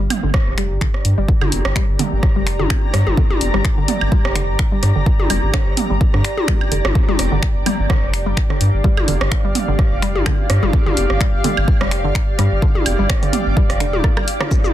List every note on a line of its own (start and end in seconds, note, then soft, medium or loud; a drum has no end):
0.00 14.73 G4 medium
0.00 14.73 D5 medium
0.00 7.53 A#5 medium
0.10 mid tom medium
0.10 open hi-hat medium
0.10 high woodblock medium
0.23 0.30 G1 medium
0.23 0.26 D3 medium
0.34 kick loud
0.34 cross-stick medium
0.47 0.72 F1 medium
0.58 0.61 G3 medium
0.58 finger snap medium
0.58 open hi-hat medium
0.71 0.78 G1 medium
0.81 0.84 D3 medium
0.81 finger snap loud
0.81 kick loud
0.94 cross-stick soft
1.05 1.13 G2 medium
1.05 open hi-hat medium
1.18 1.25 G1 medium
1.18 1.21 G3 medium
1.28 kick loud
1.41 1.48 G1 loud
1.41 1.44 D3 medium
1.41 high tom medium
1.41 high woodblock medium
1.52 1.61 F1 loud
1.52 open hi-hat loud
1.65 1.72 G1 loud
1.65 cross-stick medium
1.76 1.79 G3 medium
1.76 finger snap medium
1.76 kick loud
1.89 1.96 G1 medium
1.99 2.03 D3 medium
1.99 mid tom loud
1.99 open hi-hat medium
2.12 2.19 G1 medium
2.23 kick loud
2.23 cross-stick soft
2.36 2.61 F1 loud
2.36 2.39 G3 medium
2.47 finger snap medium
2.47 open hi-hat medium
2.59 2.67 G1 loud
2.59 2.62 D3 medium
2.59 high tom medium
2.70 finger snap medium
2.70 kick loud
2.70 high woodblock medium
2.94 3.02 G2 medium
2.94 2.97 G3 medium
2.94 cross-stick medium
2.94 open hi-hat medium
3.07 3.14 G1 medium
3.07 high tom medium
3.17 3.21 D3 medium
3.17 kick loud
3.30 3.37 G1 loud
3.30 high tom medium
3.41 3.50 F1 loud
3.41 open hi-hat loud
3.54 3.61 G1 loud
3.54 3.57 G3 medium
3.54 cross-stick soft
3.65 finger snap medium
3.65 kick loud
3.78 3.85 G1 medium
3.78 3.80 D3 medium
3.88 mid tom medium
3.88 open hi-hat loud
4.01 4.08 G1 medium
4.01 high woodblock medium
4.12 4.15 G3 medium
4.12 kick loud
4.25 4.50 F1 medium
4.25 cross-stick medium
4.35 4.39 D3 medium
4.35 finger snap medium
4.35 open hi-hat loud
4.49 4.56 G1 loud
4.59 finger snap loud
4.59 kick loud
4.72 4.75 G3 medium
4.83 4.91 G2 medium
4.83 cross-stick soft
4.83 open hi-hat medium
4.96 5.03 G1 medium
4.96 4.98 D3 medium
5.06 kick loud
5.19 5.26 G1 loud
5.19 high tom medium
5.30 5.39 F1 loud
5.30 5.33 G3 medium
5.30 open hi-hat medium
5.30 high woodblock medium
5.43 5.50 G1 loud
5.54 5.57 D3 medium
5.54 finger snap medium
5.54 kick loud
5.54 cross-stick medium
5.67 5.74 G1 medium
5.77 mid tom medium
5.77 open hi-hat loud
5.90 5.97 G1 medium
5.90 5.93 G3 medium
6.01 kick loud
6.14 6.21 G2 medium
6.14 6.17 D3 medium
6.14 cross-stick soft
6.24 finger snap medium
6.24 open hi-hat medium
6.37 high tom medium
6.48 6.51 G3 medium
6.48 finger snap medium
6.48 kick loud
6.61 high woodblock medium
6.72 6.80 F1 medium
6.72 6.75 D3 medium
6.72 open hi-hat medium
6.85 6.92 G1 medium
6.85 cross-stick medium
6.85 high tom medium
6.95 kick loud
7.08 7.15 G1 loud
7.08 7.11 G3 medium
7.08 high tom medium
7.19 7.28 F1 loud
7.19 cross-stick soft
7.19 open hi-hat medium
7.32 7.39 G1 loud
7.32 7.35 D3 medium
7.43 finger snap medium
7.43 kick loud
7.50 14.73 F5 medium
7.56 7.63 G1 medium
7.66 7.69 G3 medium
7.66 mid tom medium
7.66 open hi-hat medium
7.66 high woodblock medium
7.79 7.86 G1 medium
7.90 7.93 D3 medium
7.90 kick loud
7.90 cross-stick medium
8.03 8.28 F1 loud
8.14 finger snap medium
8.14 open hi-hat medium
8.26 8.33 G1 loud
8.26 8.29 G3 medium
8.37 finger snap medium
8.37 kick loud
8.50 8.53 D3 medium
8.50 cross-stick soft
8.61 8.69 G2 loud
8.61 open hi-hat medium
8.74 8.81 G1 medium
8.84 8.88 G3 medium
8.84 kick loud
8.97 9.04 G1 loud
8.97 high tom medium
8.97 high woodblock medium
9.08 9.17 F1 loud
9.08 9.11 D3 medium
9.08 open hi-hat medium
9.21 9.28 G1 loud
9.21 cross-stick medium
9.32 finger snap medium
9.32 kick medium
9.45 9.52 G1 medium
9.45 9.47 G3 medium
9.55 mid tom medium
9.55 open hi-hat medium
9.68 9.75 G1 medium
9.68 9.71 D3 medium
9.79 kick loud
9.79 cross-stick soft
9.92 10.17 F1 loud
10.02 10.06 G3 medium
10.02 finger snap medium
10.02 open hi-hat medium
10.15 10.22 G1 loud
10.15 high tom medium
10.26 10.29 D3 medium
10.26 finger snap medium
10.26 kick loud
10.26 high woodblock medium
10.50 10.58 G2 medium
10.50 cross-stick medium
10.50 open hi-hat medium
10.63 10.70 G1 medium
10.63 10.65 G3 medium
10.63 high tom medium
10.73 kick loud
10.86 10.93 G1 loud
10.86 10.89 D3 medium
10.86 high tom medium
10.97 11.06 F1 loud
10.97 open hi-hat medium
11.10 11.17 G1 loud
11.10 cross-stick soft
11.21 11.24 G3 medium
11.21 finger snap medium
11.21 kick loud
11.34 11.41 G1 medium
11.44 11.47 D3 medium
11.44 mid tom medium
11.44 open hi-hat medium
11.57 11.64 G1 medium
11.57 high woodblock medium
11.68 kick loud
11.81 12.06 F1 loud
11.81 11.84 G3 medium
11.81 cross-stick medium
11.91 finger snap medium
11.91 open hi-hat medium
12.04 12.12 G1 loud
12.04 12.07 D3 medium
12.15 finger snap medium
12.15 kick loud
12.39 12.47 G2 medium
12.39 12.42 G3 medium
12.39 cross-stick soft
12.39 open hi-hat medium
12.52 12.59 G1 medium
12.62 12.66 D3 medium
12.62 kick loud
12.75 12.82 G1 loud
12.75 high tom medium
12.86 12.95 F1 loud
12.86 open hi-hat medium
12.86 high woodblock medium
12.99 13.06 G1 loud
12.99 13.02 G3 medium
13.09 finger snap medium
13.09 kick loud
13.09 cross-stick medium
13.22 13.30 G1 medium
13.22 13.25 D3 medium
13.22 open hi-hat soft
13.33 mid tom medium
13.33 open hi-hat medium
13.46 13.53 G1 medium
13.57 13.60 G3 medium
13.57 kick loud
13.70 13.95 F1 loud
13.70 cross-stick soft
13.70 open hi-hat soft
13.80 13.84 D3 medium
13.80 finger snap medium
13.80 open hi-hat medium
13.93 14.00 D1 loud
13.93 high tom medium
14.04 kick loud
14.04 cross-stick medium
14.17 14.20 G3 medium
14.17 cross-stick medium
14.17 high woodblock medium
14.28 open hi-hat medium
14.41 14.43 D3 medium
14.41 cross-stick medium
14.41 high tom medium
14.51 14.54 G3 medium
14.51 kick loud
14.51 maracas soft
14.64 14.71 G1 loud
14.64 high tom medium
14.64 maracas soft